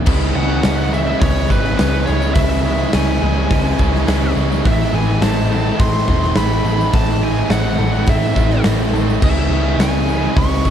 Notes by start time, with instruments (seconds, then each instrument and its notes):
0.06 picked electric bass C#2, overdriven electric guitar C#3 E3 G#3 C#4 E4, clean electric guitar B3, kick, crash
0.21 overdriven electric guitar G#3 C#4 E4, tambourine
0.34 picked electric bass C#2, distorted electric guitar C#3 G#3 C#4, overdriven electric guitar C#3 G#3 C#4 E4, clean electric guitar B3, lead electric guitar F#5
0.48 overdriven electric guitar G#3 C#4 E4
0.63 picked electric bass C#2, overdriven electric guitar C#3 E3 G#3 C#4 E4, clean electric guitar B3, snare, open hi-hat, tambourine
0.77 distorted electric guitar G#3 C#4, tambourine
0.91 overdriven electric guitar C#3 E3 G#3 C#4 E4, clean electric guitar G#4, lead electric guitar E5, muted distorted electric guitar stroke, tambourine
1.04 distorted electric guitar C#4, overdriven electric guitar E4
1.09 overdriven electric guitar G#3 C#4
1.20 picked electric bass C#2, overdriven electric guitar C#3 G#3 C#4 E4, clean electric guitar B3, lead electric guitar C#5, kick, open hi-hat
1.35 overdriven electric guitar G#3 C#4 E4
1.48 picked electric bass G#1, distorted electric guitar C#3, overdriven electric guitar C#3 E3 G#3 C#4 E4, clean electric guitar E4, lead electric guitar B4, kick, tambourine
1.64 overdriven electric guitar G#3 C#4 E4, snare, tambourine
1.76 overdriven electric guitar C#3 E3 G#3 C#4 E4, clean electric guitar B3, lead electric guitar B4, snare, open hi-hat, tambourine
1.80 picked electric bass C#2
1.91 distorted electric guitar G#3 C#4, tambourine
2.05 picked electric bass C#2, distorted electric guitar C#3, overdriven electric guitar C#3 E3 G#3 C#4 E4, clean electric guitar G#4, lead electric guitar C#5, tambourine
2.20 overdriven electric guitar G#3 C#4 E4, tambourine
2.34 picked electric bass C#2, overdriven electric guitar C#3 E3 G#3 C#4 E4, clean electric guitar B3, lead electric guitar E5, kick, open hi-hat
2.48 overdriven electric guitar G#3 C#4 E4, tambourine
2.63 distorted electric guitar C#3 G#3 C#4, overdriven electric guitar C#3 G#3 C#4 E4, clean electric guitar B3
2.77 overdriven electric guitar G#3 C#4 E4
2.92 picked electric bass C#2, overdriven electric guitar C#3 E3 G#3 C#4 E4, clean electric guitar B3, lead electric guitar G#5, snare, open hi-hat, tambourine
3.04 distorted electric guitar G#3 C#4
3.19 picked electric bass C#2, overdriven electric guitar C#3 E3 G#3 C#4 E4, clean electric guitar G#4, muted distorted electric guitar stroke
3.32 distorted electric guitar C#4, overdriven electric guitar E4
3.37 overdriven electric guitar G#3 C#4
3.48 picked electric bass C#2, overdriven electric guitar C#3 G#3 C#4 E4, clean electric guitar B3, kick, open hi-hat
3.64 overdriven electric guitar G#3 C#4 E4
3.77 picked electric bass C#2, distorted electric guitar C#3, overdriven electric guitar C#3 E3 G#3, clean electric guitar E4, kick, tambourine
3.81 overdriven electric guitar C#4 E4
3.93 overdriven electric guitar G#3 C#4 E4, snare, tambourine
4.06 picked electric bass C#2, overdriven electric guitar C#3 E3 G#3 C#4 E4, clean electric guitar B3, snare, open hi-hat, tambourine
4.20 distorted electric guitar G#3 C#4
4.34 picked electric bass C#2, distorted electric guitar C#3, overdriven electric guitar C#3 E3 G#3 C#4, clean electric guitar G#4, tambourine
4.38 overdriven electric guitar E4
4.50 overdriven electric guitar G#3 C#4 E4, tambourine
4.64 picked electric bass A1, overdriven electric guitar A2 E3 A3 C4 E4, clean electric guitar E3, lead electric guitar E5, kick, open hi-hat
4.79 overdriven electric guitar A3 C4 E4, tambourine
4.92 picked electric bass A1, distorted electric guitar A2 E3 A3, overdriven electric guitar A2 E3 A3 C4 E4, clean electric guitar E3, lead electric guitar G#5
5.05 overdriven electric guitar A3 C4 E4
5.21 picked electric bass A1, overdriven electric guitar A2 E3 A3 C4 E4, clean electric guitar C4, lead electric guitar A5, snare, open hi-hat, tambourine
5.35 distorted electric guitar E3 A3, tambourine
5.49 overdriven electric guitar A2 E3 A3 C4 E4, clean electric guitar A4, muted distorted electric guitar stroke
5.64 distorted electric guitar E3, overdriven electric guitar A3 C4 E4
5.77 picked electric bass A1, overdriven electric guitar A2 E3 A3 C4 E4, clean electric guitar C4, lead electric guitar C6, kick, open hi-hat
5.93 distorted electric guitar E3, overdriven electric guitar A3 C4 E4
6.07 picked electric bass E1, overdriven electric guitar A2 E3 A3 C4 E4, distorted electric guitar A2, clean electric guitar E4, kick, snare
6.21 overdriven electric guitar A3 C4 E4, snare, tambourine
6.35 picked electric bass A1, overdriven electric guitar A2 E3 A3 C4 E4, clean electric guitar C4, lead electric guitar B5, snare, open hi-hat, tambourine
6.51 distorted electric guitar E3 A3, tambourine
6.64 picked electric bass A1, distorted electric guitar A2, overdriven electric guitar A2 E3 A3 C4 E4, clean electric guitar A4, tambourine
6.78 overdriven electric guitar A3 C4 E4, tambourine
6.92 picked electric bass A1, overdriven electric guitar A2 E3 A3 C4 E4, clean electric guitar E3, lead electric guitar A5, kick, open hi-hat
7.07 overdriven electric guitar A3 C4 E4, tambourine
7.21 distorted electric guitar A2 E3 A3, overdriven electric guitar A2 E3 A3 C4 E4, clean electric guitar E3, lead electric guitar G#5
7.36 overdriven electric guitar A3 C4 E4, tambourine
7.49 picked electric bass A1, overdriven electric guitar A2 E3 A3 C4 E4, clean electric guitar C4, lead electric guitar F#5, snare, open hi-hat, tambourine
7.65 distorted electric guitar E3 A3, tambourine
7.78 picked electric bass A1, overdriven electric guitar A2 E3 A3 C4 E4, clean electric guitar A4, muted distorted electric guitar stroke
7.92 distorted electric guitar E3 A3, overdriven electric guitar C4 E4, tambourine
7.96 overdriven electric guitar A3
8.07 picked electric bass A1, overdriven electric guitar A2 E3 A3 C4 E4, clean electric guitar C4, lead electric guitar E5, kick, open hi-hat, tambourine
8.22 distorted electric guitar E3, overdriven electric guitar A3 C4 E4
8.35 picked electric bass A1, distorted electric guitar A2, overdriven electric guitar A2 E3 A3 C4 E4, clean electric guitar E4, kick, snare, tambourine
8.49 overdriven electric guitar A3 C4 E4, snare
8.64 picked electric bass A1, overdriven electric guitar A2 E3 A3 C4 E4, clean electric guitar C4, snare, open hi-hat, tambourine
8.78 distorted electric guitar E3 A3, tambourine
8.92 picked electric bass A1, distorted electric guitar A2, overdriven electric guitar A2 E3 A3 C4 E4, clean electric guitar A4, tambourine
9.07 overdriven electric guitar A3 C4 E4, tambourine
9.21 picked electric bass C#2, overdriven electric guitar C#3 E3 G#3 C#4 E4, clean electric guitar B3, lead electric guitar E5, kick, crash
9.35 overdriven electric guitar G#3 C#4 E4, tambourine
9.50 picked electric bass C#2, distorted electric guitar C#3 G#3 C#4, overdriven electric guitar C#3 G#3 C#4 E4, clean electric guitar B3
9.64 overdriven electric guitar G#3 C#4 E4
9.78 picked electric bass C#2, overdriven electric guitar C#3 E3 G#3 C#4 E4, clean electric guitar B3, lead electric guitar G#5, snare, open hi-hat, tambourine
9.91 distorted electric guitar G#3 C#4
10.07 overdriven electric guitar C#3 E3 G#3 C#4 E4, clean electric guitar G#4, muted distorted electric guitar stroke, tambourine
10.21 overdriven electric guitar G#3 C#4 E4
10.36 picked electric bass C#2, overdriven electric guitar C#3 G#3 C#4 E4, clean electric guitar B3, lead electric guitar C#6, kick, open hi-hat
10.50 overdriven electric guitar G#3 C#4 E4
10.64 picked electric bass G#1, distorted electric guitar C#3, overdriven electric guitar C#3 E3 G#3 C#4 E4, clean electric guitar E4, kick, snare, tambourine